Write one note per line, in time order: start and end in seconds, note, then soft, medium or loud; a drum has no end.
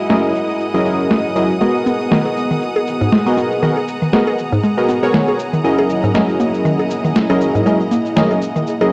0.00 1.57 G#3 medium
0.00 1.57 E4 medium
0.00 1.61 E4 medium
0.00 1.57 F#4 medium
0.00 8.92 G#4 medium
0.00 5.35 A#4 medium
0.00 1.57 D#5 medium
0.00 3.12 D#5 medium
0.00 8.92 F#5 medium
0.00 1.61 A#5 medium
0.00 8.92 D#6 medium
0.10 0.32 F#3 medium
0.10 0.32 C#4 medium
0.10 0.32 E4 medium
0.10 0.32 G#4 medium
0.10 0.32 A#4 medium
0.10 0.32 D#5 medium
0.10 snare loud
0.10 cabasa soft
0.24 cabasa soft
0.35 cabasa medium
0.49 cabasa soft
0.60 cabasa soft
0.74 0.83 F#3 medium
0.74 0.83 C#4 medium
0.74 0.83 E4 medium
0.74 0.83 G#4 medium
0.74 0.83 A#4 medium
0.74 0.83 D#5 medium
0.74 cabasa soft
0.85 1.33 F#3 medium
0.85 1.33 C#4 medium
0.85 1.33 E4 medium
0.85 1.33 G#4 medium
0.85 1.33 A#4 medium
0.85 1.33 D#5 medium
0.85 cabasa medium
1.00 cabasa soft
1.11 snare loud
1.11 cabasa soft
1.25 cabasa soft
1.36 1.51 F#3 medium
1.36 1.51 C#4 medium
1.36 1.51 E4 medium
1.36 1.51 G#4 medium
1.36 1.51 A#4 medium
1.36 1.51 D#5 medium
1.36 cabasa medium
1.50 cabasa soft
1.61 1.73 G#3 medium
1.61 2.09 B3 medium
1.61 5.39 B3 medium
1.61 5.35 B3 medium
1.61 2.09 F#4 medium
1.61 2.09 G#4 medium
1.61 8.92 G#4 medium
1.61 2.09 A#4 medium
1.61 2.09 D#5 medium
1.61 7.37 F#5 medium
1.61 cabasa soft
1.74 8.92 A#5 medium
1.74 cabasa soft
1.86 1.99 B3 medium
1.86 cabasa medium
2.01 cabasa soft
2.11 2.24 D#3 medium
2.11 3.23 B3 medium
2.11 3.23 F#4 medium
2.11 3.23 G#4 medium
2.11 3.23 A#4 medium
2.11 3.23 D#5 medium
2.11 snare loud
2.11 cabasa soft
2.26 2.32 G#4 medium
2.26 cabasa soft
2.37 cabasa medium
2.51 2.57 D#3 medium
2.51 cabasa soft
2.62 cabasa soft
2.76 2.80 G#4 medium
2.76 cabasa soft
2.87 cabasa medium
3.01 3.08 G#2 loud
3.01 cabasa soft
3.12 3.25 G#3 medium
3.12 snare loud
3.12 cabasa soft
3.26 3.60 B3 medium
3.26 3.60 F#4 medium
3.26 3.60 G#4 medium
3.26 3.60 A#4 medium
3.26 3.60 D#5 medium
3.26 cabasa soft
3.37 3.50 B3 medium
3.37 cabasa medium
3.52 cabasa soft
3.62 3.75 D#3 loud
3.62 3.78 B3 medium
3.62 3.78 F#4 medium
3.62 3.78 G#4 medium
3.62 3.78 A#4 medium
3.62 3.78 D#5 medium
3.62 cabasa soft
3.77 3.83 G#4 medium
3.77 cabasa soft
3.88 cabasa medium
4.02 4.09 D#3 medium
4.02 cabasa soft
4.13 4.35 B3 medium
4.13 4.35 F#4 medium
4.13 4.36 G#4 medium
4.13 4.36 A#4 medium
4.13 4.36 D#5 medium
4.13 snare loud
4.13 cabasa soft
4.27 4.31 G#4 loud
4.27 cabasa soft
4.38 cabasa medium
4.53 4.59 G#2 loud
4.53 cabasa soft
4.64 4.76 G#3 medium
4.64 cabasa soft
4.77 4.99 B3 medium
4.77 4.99 F#4 medium
4.77 5.00 G#4 medium
4.77 5.00 A#4 medium
4.77 5.00 D#5 medium
4.77 cabasa soft
4.89 5.01 B3 medium
4.89 cabasa medium
5.03 5.38 B3 medium
5.03 5.38 F#4 medium
5.03 5.38 G#4 medium
5.03 5.38 A#4 medium
5.03 5.38 C#5 medium
5.03 cabasa soft
5.14 5.26 D#3 loud
5.14 snare loud
5.14 cabasa soft
5.28 5.35 G#4 medium
5.28 cabasa soft
5.39 8.92 A#3 medium
5.39 8.92 E4 medium
5.39 8.92 D#5 medium
5.39 cabasa medium
5.53 5.60 D#3 medium
5.53 cabasa soft
5.58 8.92 D#5 medium
5.64 6.12 F#3 medium
5.64 6.12 C#4 medium
5.64 6.12 E4 medium
5.64 6.12 G#4 medium
5.64 6.12 A#4 medium
5.64 6.12 D#5 medium
5.64 cabasa soft
5.79 5.82 G#4 medium
5.79 cabasa soft
5.90 cabasa medium
6.04 6.10 G#2 loud
6.04 cabasa soft
6.14 7.26 F#3 medium
6.14 6.27 G#3 medium
6.14 7.26 C#4 medium
6.14 7.26 E4 medium
6.14 7.26 G#4 medium
6.14 7.27 A#4 medium
6.14 7.27 D#5 medium
6.14 snare loud
6.14 cabasa soft
6.29 cabasa soft
6.40 6.52 A#3 medium
6.40 cabasa medium
6.54 cabasa soft
6.65 6.78 D#3 loud
6.65 cabasa soft
6.79 6.86 G#4 medium
6.79 cabasa soft
6.91 cabasa medium
7.05 7.11 D#3 medium
7.05 cabasa soft
7.16 snare loud
7.16 cabasa soft
7.30 7.63 F#3 medium
7.30 7.63 C#4 medium
7.30 7.63 E4 medium
7.30 7.34 G#4 loud
7.30 7.63 G#4 medium
7.30 7.63 A#4 medium
7.30 7.63 D#5 medium
7.30 cabasa soft
7.41 8.92 G#5 medium
7.41 cabasa medium
7.55 7.62 G#2 loud
7.55 cabasa soft
7.66 7.81 F#3 medium
7.66 7.79 G#3 medium
7.66 7.81 C#4 medium
7.66 7.81 E4 medium
7.66 7.81 G#4 medium
7.66 7.81 A#4 medium
7.66 7.81 D#5 medium
7.66 cabasa soft
7.80 cabasa soft
7.91 8.04 A#3 medium
7.91 cabasa medium
8.06 cabasa soft
8.16 8.29 D#3 loud
8.16 8.39 F#3 medium
8.16 8.39 C#4 medium
8.16 8.39 E4 medium
8.16 8.39 G#4 medium
8.16 8.39 A#4 medium
8.16 8.39 D#5 medium
8.16 snare loud
8.16 cabasa soft
8.31 8.37 G#4 medium
8.31 cabasa soft
8.42 cabasa medium
8.56 8.62 D#3 medium
8.56 cabasa soft
8.67 cabasa soft
8.81 8.90 F#3 medium
8.81 8.90 C#4 medium
8.81 8.90 E4 medium
8.81 8.85 G#4 loud
8.81 8.90 G#4 medium
8.81 8.90 A#4 medium
8.81 8.90 D#5 medium
8.81 cabasa soft